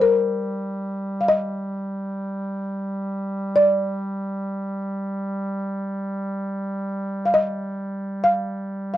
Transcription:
0.00 8.97 G3 soft
0.00 1.16 A#4 medium
1.21 1.28 F5 soft
1.28 3.63 D#5 medium
3.56 5.41 D5 medium
7.26 7.35 F5 medium
7.34 8.27 D#5 medium
8.24 8.93 F5 medium
8.94 8.97 F5 medium

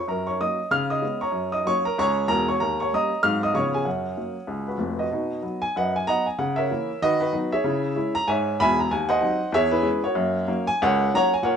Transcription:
0.08 0.35 F#2 medium
0.08 0.27 A#4 medium
0.08 0.27 A#5 medium
0.27 0.39 C#5 medium
0.27 0.39 C#6 medium
0.40 0.57 F#3 soft
0.40 0.58 A#3 soft
0.40 0.58 C#4 soft
0.40 0.70 D#5 medium
0.40 0.71 D#6 loud
0.71 0.98 C#3 medium
0.71 0.89 F5 medium
0.71 0.90 F6 loud
0.90 1.20 D#5 medium
0.90 1.21 D#6 medium
1.02 1.19 G#3 soft
1.02 1.20 B3 soft
1.02 1.20 C#4 medium
1.21 1.51 C#5 medium
1.21 1.51 A#5 medium
1.21 1.53 C#6 medium
1.32 1.59 F#2 medium
1.52 1.65 D#5 medium
1.52 1.65 D#6 medium
1.65 1.82 F#3 medium
1.65 1.83 A#3 medium
1.65 1.84 C#4 medium
1.65 1.84 C#5 medium
1.65 1.85 C#6 loud
1.85 1.97 A#4 medium
1.85 1.97 A#5 medium
1.98 2.24 C#2 medium
1.98 2.28 C#5 medium
1.98 2.27 A#5 medium
1.98 2.29 C#6 loud
2.28 2.53 E1 medium
2.28 2.53 E2 medium
2.28 2.47 A#4 medium
2.28 2.47 A#5 loud
2.48 2.60 C#5 medium
2.48 2.60 C#6 medium
2.60 2.87 D#2 medium
2.60 2.78 A#4 medium
2.60 2.79 A#5 medium
2.80 2.92 C#5 medium
2.80 2.92 C#6 medium
2.93 3.10 G3 soft
2.93 3.11 A#3 medium
2.93 3.11 C#4 medium
2.93 3.22 D#5 medium
2.93 3.23 A#5 medium
2.93 3.24 D#6 loud
3.23 3.50 G#2 medium
3.23 3.40 F#3 medium
3.23 3.40 G#3 soft
3.23 3.41 C4 medium
3.23 3.41 F5 medium
3.23 3.42 F6 loud
3.43 3.55 D#5 medium
3.43 3.55 D#6 medium
3.54 3.81 C#3 medium
3.54 3.71 F3 soft
3.54 3.72 B3 medium
3.54 3.72 C#4 soft
3.54 3.73 C#5 medium
3.54 3.73 C#6 medium
3.74 3.86 G#4 medium
3.74 3.86 G#5 medium
3.85 4.12 F#2 medium
3.85 4.67 F#4 soft
3.85 4.96 C#5 soft
3.85 4.99 F#5 medium
4.17 4.34 F#3 soft
4.17 4.35 A#3 soft
4.17 4.35 C#4 soft
4.47 4.75 C#2 medium
4.67 4.97 F#4 soft
4.67 4.99 B4 medium
4.78 5.04 F1 medium
4.78 5.05 F2 medium
4.99 5.58 F#4 medium
4.99 5.59 B4 medium
4.99 5.62 D#5 medium
5.11 5.38 B2 medium
5.11 5.30 D#4 medium
5.43 5.60 F#3 medium
5.43 5.60 B3 medium
5.62 5.75 G#5 loud
5.76 6.02 F#2 medium
5.76 5.94 B4 medium
5.76 5.94 D#5 medium
5.76 5.95 F#5 loud
5.96 6.07 G#5 medium
6.07 6.25 F#3 soft
6.07 6.25 B3 medium
6.07 6.25 D#5 medium
6.07 6.25 F#5 medium
6.07 6.26 A#5 loud
6.26 6.38 G#5 medium
6.39 6.65 C#3 medium
6.39 6.57 F#5 medium
6.56 6.98 A#4 medium
6.56 6.99 C#5 medium
6.56 7.01 E5 medium
6.71 6.88 E3 medium
6.71 6.88 A#3 medium
6.71 6.89 E4 medium
7.02 7.29 D#3 medium
7.02 7.20 F#4 medium
7.02 7.19 B4 medium
7.02 7.21 D#5 loud
7.20 7.32 D#4 medium
7.20 7.51 F#4 medium
7.20 7.52 B4 medium
7.33 7.50 F#3 medium
7.33 7.50 B3 medium
7.33 7.50 D#4 medium
7.52 8.12 G#4 medium
7.52 8.12 C#5 medium
7.52 8.15 E5 loud
7.64 7.91 C#3 medium
7.64 7.83 E4 medium
7.96 8.14 G#3 medium
7.96 8.13 C#4 medium
7.96 8.14 E4 medium
8.15 8.27 A#5 loud
8.28 8.54 G#2 medium
8.28 8.58 C#5 medium
8.28 8.58 E5 medium
8.28 8.59 G#5 loud
8.60 8.85 E1 medium
8.60 8.85 E2 loud
8.60 8.78 E5 loud
8.60 8.78 G#5 loud
8.60 8.78 B5 loud
8.80 8.91 A#5 medium
8.91 9.18 D#2 medium
8.91 9.10 G#5 loud
9.09 9.51 C5 medium
9.09 9.51 D#5 medium
9.09 9.53 F#5 loud
9.21 9.39 F#3 medium
9.21 9.39 C4 medium
9.21 9.39 D#4 medium
9.52 9.80 E2 loud
9.52 9.72 G#4 medium
9.52 9.72 C#5 loud
9.52 9.73 E5 loud
9.71 10.02 E4 medium
9.71 10.02 G#4 medium
9.71 10.04 B4 loud
9.82 10.00 G#3 medium
9.82 10.00 C#4 medium
10.04 10.64 F#4 medium
10.04 10.64 A#4 medium
10.04 10.67 C#5 medium
10.15 10.43 F#2 loud
10.15 10.34 A#3 medium
10.48 10.65 F#3 medium
10.48 10.65 A#3 medium
10.48 10.66 C#4 medium
10.67 10.80 G#5 loud
10.82 11.08 C#2 loud
10.82 11.11 A#4 medium
10.82 11.11 C#5 medium
10.82 11.13 F#5 loud
11.14 11.31 F#3 medium
11.14 11.31 A#3 medium
11.14 11.31 C#4 medium
11.14 11.32 C#5 loud
11.14 11.32 F#5 loud
11.14 11.32 A#5 loud
11.34 11.45 G#5 medium
11.42 11.57 A#2 medium
11.42 11.57 A#4 medium
11.42 11.57 C#5 medium
11.42 11.57 F#5 loud

